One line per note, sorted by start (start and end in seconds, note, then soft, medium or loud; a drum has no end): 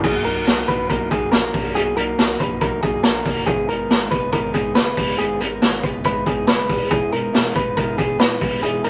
0.04 0.21 B1 loud
0.04 0.25 B2 medium
0.04 0.26 F#3 medium
0.04 0.25 A#3 medium
0.04 0.25 D#4 medium
0.04 0.24 G#4 medium
0.04 kick loud
0.04 crash medium
0.24 0.42 B1 loud
0.24 0.46 A#3 medium
0.24 0.47 D#4 medium
0.24 0.65 A#4 medium
0.24 hi-hat pedal medium
0.24 open hi-hat medium
0.28 0.46 F#3 soft
0.45 0.64 B1 loud
0.45 0.68 B2 medium
0.45 0.68 F#3 medium
0.45 0.67 A#3 medium
0.45 0.67 D#4 medium
0.45 snare loud
0.45 hi-hat pedal medium
0.45 open hi-hat medium
0.68 0.86 A#1 medium
0.68 0.89 F#3 soft
0.68 0.89 A#3 soft
0.68 0.90 D#4 medium
0.68 0.89 B4 medium
0.68 kick medium
0.68 hi-hat pedal medium
0.68 open hi-hat medium
0.89 1.07 B1 loud
0.89 1.11 B2 medium
0.89 1.11 F#3 medium
0.89 1.11 A#3 medium
0.89 1.09 D#4 medium
0.89 1.11 A#4 medium
0.89 kick medium
0.89 hi-hat pedal medium
0.89 open hi-hat medium
1.10 1.29 B1 loud
1.10 1.31 F#3 soft
1.10 1.31 A#3 soft
1.10 1.32 D#4 medium
1.10 1.31 G#4 medium
1.10 kick medium
1.10 hi-hat pedal medium
1.10 open hi-hat medium
1.31 1.50 A#1 medium
1.31 1.53 B2 medium
1.31 1.54 F#3 medium
1.31 1.53 A#3 medium
1.31 1.52 D#4 medium
1.31 1.73 A#4 medium
1.31 snare loud
1.31 hi-hat pedal medium
1.31 open hi-hat medium
1.53 1.71 A#1 medium
1.53 1.74 F#3 soft
1.53 1.75 A#3 medium
1.53 1.75 D#4 soft
1.53 kick loud
1.53 hi-hat pedal medium
1.53 open hi-hat medium
1.75 1.93 B1 loud
1.75 1.97 B2 medium
1.75 1.97 F#3 medium
1.75 1.96 A#3 medium
1.75 1.95 D#4 loud
1.75 1.96 G#4 medium
1.75 hi-hat pedal medium
1.75 open hi-hat medium
1.96 2.14 B1 loud
1.96 2.18 F#3 medium
1.96 2.18 A#3 medium
1.96 2.18 D#4 medium
1.96 2.40 A#4 medium
1.96 hi-hat pedal medium
1.96 open hi-hat medium
2.18 2.36 B1 loud
2.18 2.40 B2 medium
2.18 2.40 F#3 medium
2.18 2.40 A#3 medium
2.18 2.39 D#4 medium
2.18 snare loud
2.18 hi-hat pedal medium
2.18 open hi-hat medium
2.40 2.58 A#1 medium
2.40 2.61 F#3 soft
2.40 2.62 A#3 medium
2.40 2.61 D#4 medium
2.40 2.61 B4 medium
2.40 kick loud
2.40 hi-hat pedal medium
2.40 open hi-hat medium
2.61 2.79 B1 loud
2.61 2.83 B2 medium
2.61 2.83 F#3 medium
2.61 2.83 A#3 medium
2.61 2.83 D#4 medium
2.61 2.82 A#4 medium
2.61 kick medium
2.61 hi-hat pedal medium
2.61 open hi-hat medium
2.82 3.00 B1 loud
2.82 3.04 F#3 soft
2.82 3.05 A#3 medium
2.82 3.05 D#4 medium
2.82 3.03 G#4 medium
2.82 kick loud
2.82 hi-hat pedal medium
2.82 open hi-hat medium
3.03 3.22 A#1 loud
3.03 3.26 B2 medium
3.03 3.26 F#3 medium
3.03 3.25 A#3 medium
3.03 3.24 D#4 medium
3.03 3.44 A#4 medium
3.03 snare loud
3.03 hi-hat pedal medium
3.03 open hi-hat medium
3.25 3.43 F#1 medium
3.25 3.47 F#3 soft
3.25 3.47 A#3 medium
3.25 3.47 D#4 medium
3.25 kick loud
3.25 hi-hat pedal medium
3.25 open hi-hat medium
3.46 3.64 G#1 loud
3.46 3.68 G#2 medium
3.46 3.69 D#3 medium
3.46 3.68 G#3 medium
3.46 3.67 B3 medium
3.46 3.67 D#4 medium
3.46 3.68 G#4 medium
3.46 kick loud
3.46 hi-hat pedal medium
3.46 open hi-hat medium
3.68 3.86 G#1 loud
3.68 3.89 G#3 medium
3.68 3.90 B3 medium
3.68 3.90 D#4 medium
3.68 4.09 A#4 medium
3.68 hi-hat pedal medium
3.68 open hi-hat medium
3.89 4.07 G#1 loud
3.89 4.11 G#2 medium
3.89 4.12 D#3 medium
3.89 4.12 G#3 medium
3.89 4.12 B3 medium
3.89 4.11 D#4 loud
3.89 snare loud
3.89 hi-hat pedal medium
3.89 open hi-hat medium
4.11 4.29 F#1 medium
4.11 4.32 G#3 soft
4.11 4.33 B3 soft
4.11 4.33 D#4 medium
4.11 4.32 B4 medium
4.11 kick medium
4.11 hi-hat pedal medium
4.11 open hi-hat medium
4.32 4.50 G#1 loud
4.32 4.54 D#3 medium
4.32 4.55 G#3 medium
4.32 4.54 B3 medium
4.32 4.53 D#4 medium
4.32 4.54 A#4 medium
4.32 kick medium
4.32 hi-hat pedal medium
4.32 open hi-hat medium
4.53 4.72 G#1 loud
4.53 4.75 G#3 soft
4.53 4.75 B3 soft
4.53 4.76 D#4 medium
4.53 4.75 G#4 medium
4.53 kick medium
4.53 hi-hat pedal medium
4.53 open hi-hat medium
4.75 4.94 F#1 medium
4.75 4.97 G#2 medium
4.75 4.98 D#3 medium
4.75 4.98 G#3 medium
4.75 4.98 B3 medium
4.75 4.96 D#4 loud
4.75 5.16 B4 loud
4.75 snare loud
4.75 hi-hat pedal medium
4.75 open hi-hat medium
4.97 5.15 F#1 medium
4.97 5.18 G#3 soft
4.97 5.18 B3 medium
4.97 5.19 D#4 medium
4.97 kick loud
4.97 hi-hat pedal medium
4.97 open hi-hat medium
5.18 5.37 G#1 loud
5.18 5.40 G#2 medium
5.18 5.41 D#3 medium
5.18 5.40 G#3 medium
5.18 5.40 B3 loud
5.18 5.39 D#4 medium
5.18 5.41 G#4 medium
5.18 hi-hat pedal medium
5.18 open hi-hat medium
5.40 5.58 G#1 loud
5.40 5.61 G#3 soft
5.40 5.62 B3 soft
5.40 5.62 D#4 medium
5.40 5.84 A#4 medium
5.40 hi-hat pedal medium
5.40 open hi-hat medium
5.61 5.80 G#1 loud
5.61 5.83 G#2 medium
5.61 5.84 D#3 medium
5.61 5.84 G#3 medium
5.61 5.83 B3 loud
5.61 5.82 D#4 medium
5.61 snare loud
5.61 hi-hat pedal medium
5.61 open hi-hat medium
5.83 6.01 F#1 medium
5.83 6.03 G#3 soft
5.83 6.04 B3 medium
5.83 6.04 D#4 medium
5.83 6.04 B4 medium
5.83 kick medium
5.83 hi-hat pedal medium
5.83 open hi-hat medium
6.04 6.22 G#1 loud
6.04 6.26 D#3 medium
6.04 6.26 G#3 medium
6.04 6.26 B3 medium
6.04 6.25 D#4 medium
6.04 6.26 B4 medium
6.04 kick medium
6.04 hi-hat pedal medium
6.04 open hi-hat medium
6.26 6.44 G#1 medium
6.26 6.48 G#3 soft
6.26 6.48 B3 medium
6.26 6.48 D#4 medium
6.26 6.48 G#4 medium
6.26 kick loud
6.26 hi-hat pedal medium
6.26 open hi-hat medium
6.47 6.67 F#1 medium
6.47 6.69 G#2 medium
6.47 6.69 D#3 medium
6.47 6.70 G#3 loud
6.47 6.69 B3 medium
6.47 6.68 D#4 medium
6.47 6.88 B4 loud
6.47 snare loud
6.47 hi-hat pedal medium
6.47 open hi-hat medium
6.69 6.87 D#1 medium
6.69 6.90 G#3 soft
6.69 6.90 B3 soft
6.69 6.90 D#4 medium
6.69 kick loud
6.69 hi-hat pedal medium
6.69 open hi-hat medium
6.90 7.09 E1 loud
6.90 7.12 E3 medium
6.90 7.12 G#3 medium
6.90 7.12 B3 medium
6.90 7.11 D#4 medium
6.90 7.12 G#4 medium
6.90 kick loud
6.90 hi-hat pedal medium
6.90 open hi-hat medium
7.12 7.30 E1 loud
7.12 7.33 G#3 soft
7.12 7.33 B3 soft
7.12 7.33 D#4 soft
7.12 7.53 A#4 medium
7.12 hi-hat pedal medium
7.12 open hi-hat medium
7.33 7.52 E1 loud
7.33 7.55 E3 medium
7.33 7.55 G#3 medium
7.33 7.55 B3 medium
7.33 7.55 D#4 medium
7.33 snare loud
7.33 hi-hat pedal medium
7.33 open hi-hat medium
7.56 7.73 D#1 medium
7.56 7.76 G#3 soft
7.56 7.77 B3 soft
7.56 7.77 D#4 medium
7.56 7.77 B4 medium
7.56 kick medium
7.56 hi-hat pedal medium
7.56 open hi-hat medium
7.77 7.95 E1 loud
7.77 7.98 E3 medium
7.77 7.99 G#3 medium
7.77 7.97 B3 medium
7.77 7.96 D#4 medium
7.77 7.98 A#4 medium
7.77 kick medium
7.77 hi-hat pedal medium
7.77 open hi-hat medium
7.97 8.16 E1 loud
7.97 8.18 G#3 soft
7.97 8.19 B3 medium
7.97 8.19 D#4 soft
7.97 8.19 G#4 medium
7.97 kick medium
7.97 hi-hat pedal medium
7.97 open hi-hat medium
8.19 8.38 D#1 medium
8.19 8.41 E3 medium
8.19 8.41 G#3 medium
8.19 8.40 B3 medium
8.19 8.39 D#4 loud
8.19 8.60 B4 loud
8.19 snare loud
8.19 hi-hat pedal medium
8.19 open hi-hat medium
8.40 8.59 D#1 medium
8.40 8.61 G#3 soft
8.40 8.62 B3 soft
8.40 8.62 D#4 medium
8.40 kick loud
8.40 hi-hat pedal medium
8.40 open hi-hat medium
8.62 8.80 E1 loud
8.62 8.84 E3 medium
8.62 8.83 G#3 medium
8.62 8.83 B3 medium
8.62 8.82 D#4 medium
8.62 8.84 G#4 medium
8.62 hi-hat pedal medium
8.62 open hi-hat medium
8.83 8.90 E1 loud
8.83 8.90 G#3 soft
8.83 8.90 B3 medium
8.83 8.90 D#4 medium
8.83 8.90 A#4 medium
8.83 hi-hat pedal medium
8.83 open hi-hat medium